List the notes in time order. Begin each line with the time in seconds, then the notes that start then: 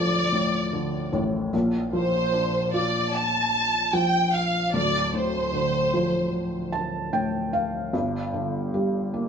Already playing: D1 D2 A2 D3 F3 A3 D5
0.32 A2
0.73 D3
1.13 A1 A2
1.53 A#1 A#2
1.93 F3 C5
2.32 D4
2.74 F4 D5
3.15 A5
3.93 F3 G5
4.33 F5
4.73 D1 D2 D5
5.13 A2 C5
5.53 D3
5.94 F3
6.72 A5
7.13 A2 G5
7.53 F5
7.93 G1 G2
8.34 D3
8.74 G3
9.14 A#3